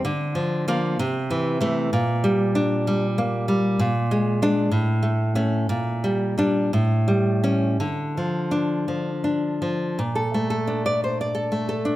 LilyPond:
\new Staff \with { instrumentName = "Nylon-string guitar" } { \clef bass \time 6/8 \key bes \lydian \tempo 4. = 61 << { r4 bes8 r4 a8 | r4 d'8. r4 r16 | r4 d'8 r4 cis'8 | r4 d'8 r4 cis'8 |
r4 d'8. r4 r16 | r4 r16 d''8 r4 r16 | } \\ { d8 f8 f8 c8 e8 e8 | bes,8 g4 g8 bes8 g8 | bes,8 aes8 aes8 a,8 a8 a8 | bes,8 g8 g8 a,8 g8 g8 |
d8 f4 f8 d'8 f8 | bes,16 a'16 a16 a'16 d'8 c''16 d''16 a'16 a16 a'16 d'16 | } >> }